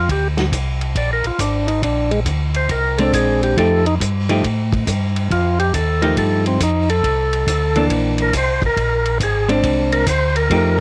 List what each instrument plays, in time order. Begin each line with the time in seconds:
0.09 tonewheel organ D2 G4, kick, ride
0.37 snare, ride
0.52 tonewheel organ C2, kick, hi-hat pedal, ride
0.81 ride
0.95 tonewheel organ A#1 D5, kick, ride
1.13 tonewheel organ A#4
1.24 tonewheel organ A#1 F4, ride
1.38 tonewheel organ G#1 D4, kick, hi-hat pedal, ride
1.67 tonewheel organ D#4, ride
1.82 tonewheel organ A#1 D4, kick, ride
2.11 tonewheel organ G#3, ride
2.25 tonewheel organ D2, kick, hi-hat pedal, ride
2.54 tonewheel organ C5, ride
2.69 tonewheel organ C2 A#4, kick, ride
2.97 hollow-body jazz guitar G#3 C4 D4, tonewheel organ A4, ride
3.13 tonewheel organ A#1 G#4, kick, hi-hat pedal, ride
3.43 tonewheel organ G4, ride
3.56 tonewheel organ F2 A4, hollow-body jazz guitar F3 A3 D#4 G4, kick, ride
3.86 tonewheel organ D#4, ride
4.00 tonewheel organ G2, kick, hi-hat pedal, ride
4.29 hollow-body jazz guitar F3 A3 D#4 G4, ride
4.44 tonewheel organ A2, kick, ride
4.72 kick, ride
4.87 tonewheel organ G2, kick, hi-hat pedal, ride
5.16 ride
5.30 tonewheel organ F2 F4, kick, ride
5.60 tonewheel organ G4, ride
5.73 tonewheel organ D#2 A4, kick, hi-hat pedal, ride
6.02 hollow-body jazz guitar F3 A3 D#4 G4, tonewheel organ A#4, ride
6.17 tonewheel organ G2 A4, kick, ride
6.46 tonewheel organ C4, ride
6.60 tonewheel organ F2 D#4, kick, hi-hat pedal, ride
6.89 tonewheel organ A4, ride
7.03 tonewheel organ C2, kick, ride
7.33 ride
7.47 tonewheel organ D2, kick, hi-hat pedal, ride
7.76 hollow-body jazz guitar E3 A#3 D4, ride
7.89 tonewheel organ A#1, kick, ride
8.18 tonewheel organ A#4, ride
8.33 tonewheel organ C2 C5, kick, hi-hat pedal, ride
8.62 tonewheel organ C2, kick, ride
8.66 tonewheel organ A#4
8.77 tonewheel organ A#1, kick, ride
9.06 ride
9.20 tonewheel organ G#1 G#4, kick, hi-hat pedal, ride
9.48 hollow-body jazz guitar G#3 C4 D4, ride
9.63 tonewheel organ C2, kick, ride
9.92 tonewheel organ A#4, ride
10.07 tonewheel organ D2 C5, kick, hi-hat pedal, ride
10.36 tonewheel organ A#4, ride
10.50 tonewheel organ F2, hollow-body jazz guitar F3 A3 D#4 G4, kick, ride